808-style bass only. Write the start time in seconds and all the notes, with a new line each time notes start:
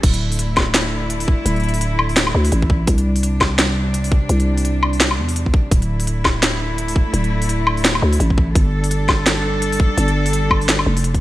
0.03 D1
1.46 D1
2.35 D2
2.52 A1
2.88 C2
4.29 C2
5.18 E2
5.71 D1
7.14 D1
8.02 D2
8.20 A1
8.55 G1
9.98 G1
10.86 F1